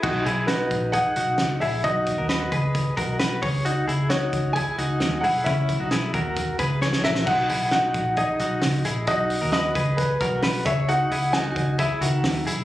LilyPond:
<<
  \new Staff \with { instrumentName = "Upright piano" } { \time 4/4 \key cis \dorian \tempo 4 = 133 r4 b'4 fis''4. e''8 | dis''2. r4 | r4 cis''4 gis''4. fis''8 | e''2. r8 e''8 |
fis''4 fis''4 dis''2 | dis''4 dis''4 b'4. e''8 | fis''4 gis''4 e''2 | }
  \new Staff \with { instrumentName = "Clean electric guitar" } { \time 4/4 \key cis \dorian <dis' fis'>8 <e' gis'>8 <dis' fis'>4 <dis' gis'>8 <dis' fis'>4 <e' gis'>8 | <dis' fis'>8. <fis' ais'>16 <fis' b'>8 <gis' b'>4 <fis' ais'>8 <fis' b'>8 <gis' cis''>8 | <dis' fis'>8 <e' gis'>8 <dis' fis'>4 <e' gis'>8 <dis' fis'>4 <e' gis'>8 | <cis' e'>8. <dis' fis'>16 <e' gis'>8 <fis' ais'>4 <gis' b'>8 <gis' cis''>8 <fis' ais'>8 |
<dis' fis'>8 <e' gis'>8 <dis' fis'>4 <dis' gis'>8 <dis' fis'>4 <e' gis'>8 | <dis' fis'>8. <fis' ais'>16 <fis' b'>8 <gis' b'>4 <fis' ais'>8 <fis' b'>8 <gis' cis''>8 | <dis' fis'>8 <e' gis'>8 <dis' fis'>4 <e' gis'>8 <dis fis'>4 <e' gis'>8 | }
  \new Staff \with { instrumentName = "Picked electric bass" } { \clef bass \time 4/4 \key cis \dorian b,,8 b,,4 ais,,8. r16 b,,8 cis,8 ais,,8 | b,,8. dis,8. cis,4 b,,4 cis,8~ | cis,8 cis,4 cis,8. r16 cis,8 dis,8 b,,8 | cis,8. b,,8. dis,4 cis,4 ais,,8 |
b,,8 b,,4 ais,,8. r16 b,,8 cis,8 ais,,8 | b,,8. dis,8. cis,4 b,,4 cis,8~ | cis,8 cis,4 cis,8. r16 cis,8 dis,8 b,,8 | }
  \new DrumStaff \with { instrumentName = "Drums" } \drummode { \time 4/4 <cymc bd>8 hh8 <hh sn>8 <hh bd>8 <hh bd>8 hh8 <hh sn>8 hho8 | <hh bd>8 <hh bd>8 <hh sn>8 <hh bd>8 <hh bd>8 <hh bd>8 <hh sn>8 <hho bd>8 | hh8 hh8 <hh sn>8 <hh bd>8 <hh bd>8 hh8 <hh sn>8 hho8 | <hh bd>8 <hh bd>8 <hh sn>8 <hh bd>8 <hh bd>8 <hh bd>8 sn16 sn16 sn16 sn16 |
<cymc bd>8 <hho hhp>8 <hho hhp sn>8 <hho hhp bd>8 <hho hhp bd>8 <hho hhp>8 <hho hhp sn>8 <hho hhp>8 | <hho hhp bd>8 <hho hhp>8 <hho hhp sn>8 <hho hhp bd>8 <hho hhp bd>8 <hho hhp bd>8 <hho hhp sn>8 <hho hhp bd>8 | <hho hhp>8 <hho hhp>8 <hho hhp sn>8 <hho hhp bd>8 <hho hhp bd>8 <hho hhp>8 <hho hhp sn>8 <hho hhp>8 | }
>>